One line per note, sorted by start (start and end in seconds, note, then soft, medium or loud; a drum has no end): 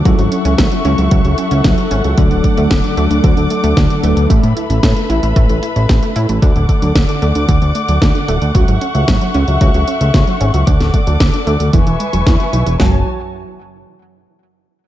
0.00 10.63 A4 medium
0.05 0.16 C#2 loud
0.05 0.17 F#3 loud
0.05 0.82 F#3 medium
0.05 0.82 C#4 medium
0.05 0.82 E4 medium
0.05 0.82 A4 loud
0.05 2.16 E5 medium
0.05 4.26 F#5 medium
0.05 2.16 C#6 medium
0.05 kick loud
0.05 closed hi-hat medium
0.19 0.29 G#1 medium
0.19 0.24 F#3 medium
0.19 closed hi-hat soft
0.32 0.41 C#4 medium
0.32 closed hi-hat medium
0.45 0.56 C#2 medium
0.45 0.54 C#4 loud
0.45 closed hi-hat soft
0.58 0.69 G#1 loud
0.58 0.68 F#3 medium
0.58 kick loud
0.58 snare loud
0.58 closed hi-hat medium
0.72 0.81 F#3 medium
0.72 closed hi-hat soft
0.85 0.95 C#2 medium
0.85 2.15 F#3 medium
0.85 0.94 C#4 loud
0.85 2.15 C#4 medium
0.85 2.15 E4 medium
0.85 2.15 A4 medium
0.85 closed hi-hat soft
0.98 1.09 C#2 medium
0.98 1.10 F#3 medium
0.98 closed hi-hat soft
1.11 1.22 C#2 loud
1.11 1.24 F#3 loud
1.11 kick loud
1.11 closed hi-hat medium
1.25 1.35 C#2 medium
1.25 1.30 F#3 medium
1.25 closed hi-hat soft
1.38 1.47 C#4 medium
1.38 closed hi-hat medium
1.51 1.62 C#2 medium
1.51 1.60 C#4 loud
1.51 closed hi-hat soft
1.64 1.75 C#2 loud
1.64 1.74 F#3 medium
1.64 kick loud
1.64 snare loud
1.64 closed hi-hat medium
1.78 1.87 F#3 medium
1.78 closed hi-hat soft
1.91 2.02 G#1 medium
1.91 2.00 C#4 loud
1.91 closed hi-hat medium
2.04 2.15 C#2 medium
2.04 2.17 F#3 medium
2.04 closed hi-hat soft
2.18 2.28 D2 loud
2.18 2.30 D3 loud
2.18 2.94 F#3 medium
2.18 2.94 A3 medium
2.18 2.94 D4 medium
2.18 2.94 A4 loud
2.18 4.28 D5 medium
2.18 4.28 D6 medium
2.18 kick loud
2.18 closed hi-hat medium
2.31 2.41 D1 medium
2.31 2.36 D3 medium
2.31 closed hi-hat soft
2.44 2.53 A3 medium
2.44 kick medium
2.44 closed hi-hat medium
2.57 2.68 D2 medium
2.57 2.67 A3 loud
2.57 closed hi-hat soft
2.71 2.81 D1 loud
2.71 2.80 D3 medium
2.71 kick loud
2.71 snare loud
2.71 closed hi-hat medium
2.84 2.93 D3 medium
2.84 closed hi-hat soft
2.97 3.08 D2 medium
2.97 4.01 F#3 medium
2.97 3.06 A3 loud
2.97 4.01 A3 medium
2.97 4.01 D4 medium
2.97 4.01 A4 medium
2.97 closed hi-hat soft
3.10 3.21 D2 medium
3.10 3.23 D3 medium
3.10 closed hi-hat soft
3.24 3.34 D2 loud
3.24 3.36 D3 loud
3.24 kick loud
3.24 closed hi-hat medium
3.37 3.48 D2 medium
3.37 3.43 D3 medium
3.37 closed hi-hat soft
3.50 3.60 A3 medium
3.50 closed hi-hat medium
3.64 3.74 D2 medium
3.64 3.73 A3 loud
3.64 closed hi-hat soft
3.77 3.87 D2 loud
3.77 3.86 D3 medium
3.77 kick loud
3.77 snare loud
3.77 closed hi-hat medium
3.90 3.99 D3 medium
3.90 closed hi-hat soft
4.03 4.14 D1 medium
4.03 4.27 F#3 medium
4.03 4.13 A3 loud
4.03 4.27 A3 medium
4.03 4.27 D4 medium
4.03 4.27 B4 medium
4.03 closed hi-hat medium
4.17 4.27 D2 medium
4.17 4.29 D3 medium
4.17 closed hi-hat soft
4.30 4.41 A1 loud
4.30 4.42 A3 loud
4.30 6.40 B4 medium
4.30 6.40 E5 medium
4.30 6.40 B5 medium
4.30 kick loud
4.30 closed hi-hat medium
4.43 4.54 A2 medium
4.43 4.49 A3 medium
4.43 closed hi-hat soft
4.56 4.66 E4 medium
4.56 closed hi-hat medium
4.70 4.80 A1 medium
4.70 4.79 C#4 medium
4.70 closed hi-hat soft
4.83 4.94 A2 loud
4.83 4.92 A3 medium
4.83 kick loud
4.83 snare loud
4.83 closed hi-hat medium
4.96 5.06 A3 medium
4.96 closed hi-hat soft
5.10 5.20 A1 medium
5.10 5.19 E4 loud
5.10 closed hi-hat soft
5.23 5.33 A1 medium
5.23 5.35 A3 medium
5.23 closed hi-hat soft
5.36 5.47 A1 loud
5.36 5.48 A3 loud
5.36 kick loud
5.36 closed hi-hat medium
5.49 5.60 A1 medium
5.49 5.55 A3 medium
5.49 closed hi-hat soft
5.63 5.72 E4 medium
5.63 closed hi-hat medium
5.76 5.87 A1 medium
5.76 5.85 C#4 medium
5.76 closed hi-hat soft
5.89 6.00 A1 loud
5.89 5.98 A3 medium
5.89 kick loud
5.89 snare loud
5.89 closed hi-hat medium
6.03 6.12 A3 medium
6.03 closed hi-hat soft
6.16 6.26 A2 medium
6.16 6.25 E4 loud
6.16 closed hi-hat medium
6.29 6.40 A1 medium
6.29 6.42 A3 medium
6.29 closed hi-hat soft
6.42 6.53 D2 loud
6.42 6.55 D3 loud
6.42 8.53 D5 medium
6.42 11.69 F#5 medium
6.42 8.53 D6 medium
6.42 kick loud
6.42 closed hi-hat medium
6.56 6.66 D1 medium
6.56 6.61 D3 medium
6.56 closed hi-hat soft
6.69 6.78 A3 medium
6.69 kick medium
6.69 closed hi-hat medium
6.82 6.93 D2 medium
6.82 6.91 F#3 medium
6.82 closed hi-hat soft
6.95 7.06 D1 loud
6.95 7.05 D3 medium
6.95 kick loud
6.95 snare loud
6.95 closed hi-hat medium
7.09 7.18 D3 medium
7.09 closed hi-hat soft
7.22 7.33 D2 medium
7.22 7.31 A3 loud
7.22 closed hi-hat soft
7.35 7.46 D2 medium
7.35 7.47 D3 medium
7.35 closed hi-hat soft
7.49 7.59 D2 loud
7.49 7.61 D3 loud
7.49 kick loud
7.49 closed hi-hat medium
7.62 7.72 D2 medium
7.62 7.67 D3 medium
7.62 closed hi-hat soft
7.75 7.84 A3 medium
7.75 closed hi-hat medium
7.88 7.99 D2 medium
7.88 7.98 F#3 medium
7.88 closed hi-hat soft
8.02 8.12 D2 loud
8.02 8.11 D3 medium
8.02 kick loud
8.02 snare loud
8.02 closed hi-hat medium
8.15 8.24 D3 medium
8.15 closed hi-hat soft
8.28 8.39 D1 medium
8.28 8.37 A3 loud
8.28 closed hi-hat medium
8.42 8.52 D2 medium
8.42 8.54 D3 medium
8.42 closed hi-hat soft
8.55 8.65 C#2 loud
8.55 8.67 F#3 loud
8.55 10.65 E5 medium
8.55 10.65 C#6 medium
8.55 kick loud
8.55 closed hi-hat medium
8.68 8.79 G#1 medium
8.68 8.74 F#3 medium
8.68 closed hi-hat soft
8.81 8.91 C#4 medium
8.81 closed hi-hat medium
8.95 9.05 C#2 medium
8.95 9.04 A3 medium
8.95 closed hi-hat soft
9.08 9.18 G#1 loud
9.08 9.17 F#3 medium
9.08 kick loud
9.08 snare loud
9.08 closed hi-hat medium
9.21 9.30 F#3 medium
9.21 closed hi-hat soft
9.34 9.45 C#2 loud
9.34 9.44 C#4 loud
9.34 closed hi-hat soft
9.48 9.58 C#2 medium
9.48 9.60 F#3 medium
9.48 closed hi-hat soft
9.61 9.72 C#2 loud
9.61 9.73 F#3 loud
9.61 kick loud
9.61 closed hi-hat medium
9.74 9.85 C#2 medium
9.74 9.80 F#3 medium
9.74 closed hi-hat soft
9.88 9.97 C#4 medium
9.88 closed hi-hat medium
10.01 10.11 C#2 medium
10.01 10.10 A3 medium
10.01 closed hi-hat soft
10.14 10.25 C#2 loud
10.14 10.23 F#3 medium
10.14 kick loud
10.14 snare loud
10.14 closed hi-hat medium
10.27 10.37 F#3 medium
10.27 closed hi-hat soft
10.41 10.51 G#1 medium
10.41 10.50 C#4 loud
10.41 closed hi-hat medium
10.54 10.64 C#2 medium
10.54 10.67 F#3 medium
10.54 closed hi-hat soft
10.67 10.78 D2 loud
10.67 10.79 D3 loud
10.67 11.72 A4 medium
10.67 11.72 D5 medium
10.67 11.72 D6 medium
10.67 kick loud
10.67 closed hi-hat loud
10.80 10.91 D1 medium
10.80 10.86 D3 medium
10.80 snare soft
10.80 closed hi-hat soft
10.94 11.03 A3 medium
10.94 kick medium
10.94 closed hi-hat medium
11.07 11.18 D2 medium
11.07 11.16 F#3 medium
11.07 closed hi-hat soft
11.20 11.31 D1 loud
11.20 11.29 D3 medium
11.20 kick loud
11.20 snare loud
11.20 closed hi-hat loud
11.34 11.43 D3 medium
11.34 closed hi-hat soft
11.47 11.57 D2 medium
11.47 11.56 A3 loud
11.47 closed hi-hat soft
11.60 11.71 D2 medium
11.60 11.73 D3 medium
11.60 closed hi-hat soft
11.73 11.84 E1 loud
11.73 11.85 E3 loud
11.73 12.79 B4 medium
11.73 12.79 E5 medium
11.73 12.78 G#5 medium
11.73 12.78 C#6 medium
11.73 kick loud
11.73 closed hi-hat medium
11.87 11.97 E1 medium
11.87 11.92 E3 medium
11.87 closed hi-hat soft
12.00 12.05 G#3 medium
12.00 closed hi-hat medium
12.13 12.24 E1 medium
12.13 12.22 F#3 medium
12.13 closed hi-hat soft
12.26 12.37 E2 loud
12.26 12.36 E3 medium
12.26 kick loud
12.26 snare loud
12.26 closed hi-hat medium
12.40 12.49 F#3 medium
12.40 closed hi-hat soft
12.53 12.64 B1 medium
12.53 12.59 E3 medium
12.53 closed hi-hat medium
12.66 12.77 E1 medium
12.66 12.75 E3 medium
12.66 closed hi-hat soft
12.80 13.04 F#1 loud
12.80 13.04 F#3 medium
12.80 13.04 F#4 medium
12.80 13.04 C#5 medium
12.80 13.04 G#5 medium
12.80 13.04 A5 medium
12.80 snare loud
12.80 floor tom loud